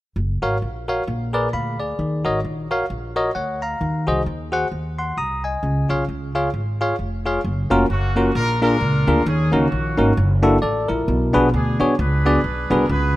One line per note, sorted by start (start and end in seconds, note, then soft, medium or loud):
0.16 0.39 F#1 medium
0.42 0.59 G#1 medium
0.42 0.56 F#4 medium
0.42 0.57 A#4 medium
0.42 0.57 C#5 medium
0.42 0.57 F5 medium
0.62 1.01 A#1 medium
0.88 1.02 F#4 medium
0.88 1.02 A#4 medium
0.88 1.03 C#5 medium
0.88 1.03 F5 medium
1.07 1.46 A#1 medium
1.07 1.76 A#2 medium
1.33 1.48 G#4 medium
1.33 1.48 A#4 medium
1.33 1.48 B4 medium
1.33 1.48 D5 medium
1.53 1.92 D2 medium
1.53 1.79 F5 medium
1.53 1.79 B5 medium
1.80 2.23 G#4 soft
1.80 2.23 D5 medium
1.99 2.22 D#2 medium
1.99 2.67 D#3 medium
2.25 2.42 G#1 medium
2.25 2.39 F#4 medium
2.25 2.39 A#4 medium
2.25 2.39 C#5 medium
2.25 2.39 D#5 medium
2.44 2.83 A#1 medium
2.71 2.85 F#4 medium
2.71 2.85 A#4 medium
2.71 2.85 C#5 medium
2.71 2.85 F5 medium
2.90 3.29 A#1 medium
3.16 3.30 F#4 medium
3.16 3.30 A#4 medium
3.16 3.30 C#5 medium
3.16 3.30 D#5 medium
3.35 3.74 D2 medium
3.35 3.61 C#5 medium
3.35 3.61 F#5 medium
3.62 4.06 F5 medium
3.62 4.05 A#5 medium
3.81 4.04 D#2 medium
3.81 4.49 D#3 medium
4.07 4.24 C2 medium
4.07 4.21 F#4 medium
4.07 4.21 G#4 medium
4.07 4.22 C5 medium
4.07 4.22 D#5 medium
4.26 4.65 D#2 medium
4.52 4.66 F#4 medium
4.52 4.66 G#4 medium
4.52 4.67 C5 medium
4.52 4.67 F#5 medium
4.72 5.11 D#2 medium
4.99 5.17 F#5 soft
4.99 5.17 C6 medium
5.17 5.56 C2 medium
5.17 5.43 A#5 medium
5.17 5.43 D#6 medium
5.44 5.88 D#5 soft
5.44 5.87 G#5 medium
5.63 5.86 C#2 medium
5.63 6.31 C#3 medium
5.89 6.06 B1 medium
5.89 6.03 F4 medium
5.89 6.04 G#4 medium
5.89 6.04 C#5 medium
5.89 6.04 F5 medium
6.09 6.47 C#2 medium
6.35 6.49 F4 medium
6.35 6.49 G#4 medium
6.35 6.49 C#5 medium
6.35 6.49 F5 medium
6.54 6.93 G#1 medium
6.81 6.94 F4 medium
6.81 6.95 G#4 medium
6.81 6.95 C#5 medium
6.81 6.95 F5 medium
6.99 7.38 F1 medium
7.25 7.40 F4 medium
7.25 7.40 G#4 medium
7.25 7.40 C#5 medium
7.25 7.40 F5 medium
7.44 7.67 F#1 medium
7.70 7.87 F1 medium
7.70 7.85 A#3 medium
7.70 7.85 C#4 medium
7.70 7.85 F4 medium
7.70 7.85 F#4 medium
7.70 7.85 A#4 loud
7.90 8.29 F#1 medium
7.90 8.33 A#3 medium
7.90 8.33 C#4 medium
7.90 8.33 F#4 medium
8.16 8.30 A#3 medium
8.16 8.31 C#4 medium
8.16 8.31 F4 medium
8.16 8.31 F#4 medium
8.16 8.31 A#4 medium
8.35 8.74 A#1 loud
8.35 9.04 A#2 medium
8.35 8.61 D4 medium
8.35 8.61 F4 medium
8.35 8.61 A#4 loud
8.62 8.76 A#3 medium
8.62 8.76 D4 medium
8.62 9.23 D4 medium
8.62 8.76 F4 medium
8.62 9.23 F4 medium
8.62 8.76 G#4 medium
8.62 9.23 A#4 loud
8.62 8.76 A#4 medium
8.81 9.04 C#2 medium
9.07 9.24 D2 loud
9.07 9.21 A#3 medium
9.07 9.21 D4 medium
9.07 9.22 F4 medium
9.07 9.22 G#4 medium
9.07 9.22 A#4 medium
9.26 9.49 D#2 loud
9.26 9.94 D#3 medium
9.26 9.53 C#4 medium
9.26 9.54 G#4 loud
9.52 9.69 C#2 medium
9.52 9.66 A#3 medium
9.52 10.40 A#3 medium
9.52 9.67 C#4 medium
9.52 10.40 C#4 medium
9.52 9.67 D#4 medium
9.52 9.67 F#4 medium
9.52 10.40 F#4 medium
9.52 9.67 A#4 medium
9.72 9.95 A#1 medium
9.98 10.14 G#1 loud
9.98 10.12 A#3 medium
9.98 10.12 C#4 medium
9.98 10.12 D#4 medium
9.98 10.12 F#4 medium
9.98 10.12 A#4 medium
10.17 10.56 F#1 loud
10.43 10.57 A#3 medium
10.43 10.57 D4 medium
10.43 10.57 E4 medium
10.43 10.57 F#4 medium
10.43 10.57 A4 loud
10.62 10.85 A1 medium
10.62 10.88 A4 medium
10.62 10.88 D5 medium
10.88 11.06 A#1 medium
10.88 11.32 E4 medium
10.88 11.32 A#4 medium
11.08 11.31 B1 loud
11.08 11.76 B2 medium
11.33 11.51 A#1 medium
11.33 11.48 B3 medium
11.33 11.48 D4 medium
11.33 11.48 F#4 medium
11.33 11.48 G#4 medium
11.33 11.48 B4 loud
11.53 11.76 D2 medium
11.53 11.98 D4 medium
11.53 11.96 G#4 medium
11.80 11.96 B1 medium
11.80 11.94 B3 medium
11.80 11.94 D4 medium
11.80 11.94 F#4 medium
11.80 11.94 G#4 medium
11.80 11.94 C#5 medium
11.99 12.38 C#2 loud
11.99 12.86 D4 medium
11.99 12.86 G#4 medium
11.99 12.71 B4 medium
12.26 12.39 B3 medium
12.26 12.39 D4 medium
12.26 12.40 F#4 medium
12.26 12.40 G#4 medium
12.26 12.40 D5 medium
12.44 12.67 B1 medium
12.70 12.87 C2 loud
12.70 12.84 B3 medium
12.70 12.85 D4 medium
12.70 12.85 F#4 medium
12.70 12.85 G#4 medium
12.70 12.90 A#4 loud
12.70 12.85 B4 medium
12.89 13.12 C#2 loud
12.89 13.16 C#3 medium
12.89 13.16 F#4 medium
12.89 13.16 G#4 medium
12.89 13.16 B4 loud